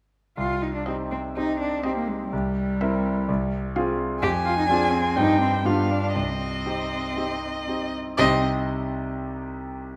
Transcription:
0.37 grand piano C2, cello F4
0.62 cello D#4
0.75 cello D4
0.86 cello C4, grand piano C4 D#4 G4, violin D#5
1.11 cello C4
1.36 grand piano C4 D#4 G4, cello D#4
1.59 cello D4
1.84 grand piano C4 D#4 G4, cello C4, violin D#5
1.96 cello A#3
2.07 cello G#3
2.31 grand piano C2, cello G3
2.81 grand piano C4 E4 A#4, violin E5
3.28 grand piano C2
3.76 grand piano C4 F4 G#4, violin F5
4.22 grand piano F2, cello G4, violin G#5
4.45 cello F4
4.58 cello D#4
4.69 grand piano C4 F4 G#4, cello D4
4.92 cello C4
5.16 grand piano G2 C4 D#4 G4, cello D#4, violin G5
5.42 cello C4
5.65 grand piano G2 D4 F4 G4, cello B3, violin F5
5.90 cello D4
6.15 grand piano C2, cello C4, violin D#5
6.23 cello D4
6.30 cello C4
6.66 grand piano C4 D#4 G4
7.17 grand piano C4 D#4 G4
7.68 grand piano C4 D#4 G4
8.18 grand piano C2 C3 C4 D#4 G4 D#5, cello C4, violin D#5

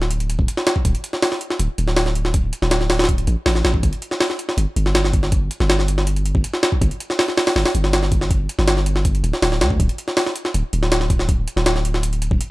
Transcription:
Already playing: 808-style bass D1
0.02 snare
0.11 closed hi-hat
0.20 closed hi-hat
0.30 closed hi-hat
0.39 808-style bass D1, kick
0.48 closed hi-hat
0.57 snare
0.67 snare, closed hi-hat
0.76 kick
0.85 808-style bass D1, kick, closed hi-hat
0.95 closed hi-hat
1.04 closed hi-hat
1.13 snare
1.22 snare, open hi-hat
1.32 snare
1.41 closed hi-hat
1.50 snare
1.59 808-style bass D1, closed hi-hat
1.78 808-style bass D1, closed hi-hat
1.88 snare
1.97 snare, open hi-hat
2.06 snare
2.15 closed hi-hat
2.25 snare
2.34 kick, closed hi-hat
2.53 closed hi-hat
2.62 808-style bass D1, snare
2.71 snare, closed hi-hat
2.81 snare
2.90 snare, open hi-hat
2.99 snare, open hi-hat
3.04 snare, open hi-hat
3.09 kick, closed hi-hat
3.18 closed hi-hat
3.27 808-style bass A1, closed hi-hat
3.46 808-style bass A1, snare, open hi-hat
3.55 snare
3.65 808-style bass A1, snare, closed hi-hat
3.74 kick
3.83 808-style bass G1, kick, closed hi-hat
3.93 closed hi-hat
4.02 closed hi-hat
4.11 snare
4.20 snare, open hi-hat
4.30 snare
4.39 closed hi-hat
4.49 snare
4.57 808-style bass G1, closed hi-hat
4.76 808-style bass G1, closed hi-hat
4.86 snare
4.95 snare, closed hi-hat
5.04 snare
5.13 kick, closed hi-hat
5.23 snare
5.32 kick, closed hi-hat
5.51 closed hi-hat
5.60 808-style bass G1, snare
5.70 snare, closed hi-hat
5.79 snare
5.88 closed hi-hat
5.98 snare
6.07 closed hi-hat
6.16 closed hi-hat
6.26 closed hi-hat
6.35 808-style bass G1, kick
6.44 closed hi-hat
6.54 snare
6.63 snare, closed hi-hat
6.72 kick
6.81 808-style bass G1, kick, closed hi-hat
6.91 closed hi-hat
7.00 closed hi-hat
7.10 snare
7.19 snare, open hi-hat
7.28 snare
7.37 snare, open hi-hat
7.47 snare, open hi-hat
7.56 808-style bass G1, snare, open hi-hat
7.66 snare, open hi-hat
7.75 808-style bass G1, closed hi-hat
7.84 snare
7.93 snare, closed hi-hat
8.03 snare
8.12 kick, closed hi-hat
8.21 snare
8.31 kick, closed hi-hat
8.49 closed hi-hat
8.59 808-style bass G1, snare
8.68 snare, closed hi-hat
8.77 snare
8.86 closed hi-hat
8.96 snare
9.05 kick, closed hi-hat
9.15 closed hi-hat
9.24 808-style bass D1, closed hi-hat
9.33 snare
9.42 808-style bass D1, snare, open hi-hat
9.52 snare
9.61 808-style bass D2, snare, closed hi-hat
9.70 kick
9.80 808-style bass D1, kick, closed hi-hat
9.89 closed hi-hat
9.98 closed hi-hat
10.08 snare
10.17 snare, open hi-hat
10.26 snare
10.36 closed hi-hat
10.45 snare
10.54 808-style bass D1, closed hi-hat
10.73 808-style bass D1, closed hi-hat
10.83 snare
10.92 snare, closed hi-hat
11.01 snare
11.10 kick, closed hi-hat
11.19 snare
11.29 kick, closed hi-hat
11.48 closed hi-hat
11.57 808-style bass D1, snare
11.66 snare, closed hi-hat
11.76 snare
11.85 closed hi-hat
11.94 snare
12.03 closed hi-hat
12.13 closed hi-hat
12.22 closed hi-hat
12.31 808-style bass D1, kick
12.41 closed hi-hat

